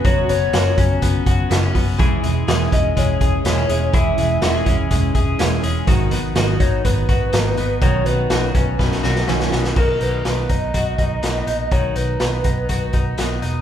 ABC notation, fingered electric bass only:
X:1
M:4/4
L:1/8
Q:1/4=123
K:B
V:1 name="Fingered electric bass" clef=bass
F,,, F,,, F,,, F,,, F,,, F,,, F,,, F,,, | E,,, E,,, E,,, E,,, E,,, E,,, E,,, E,,, | E,,, E,,, E,,, E,,, E,,, E,,, E,,, E,,, | G,,, G,,, G,,, G,,, G,,, G,,, G,,, G,,, |
B,,, B,,, B,,, B,,, B,,, B,,, B,,, B,,, | B,,, B,,, B,,, B,,, B,,, B,,, B,,, A,,, | B,,, B,,, B,,, B,,, B,,, B,,, B,,, E,,, |]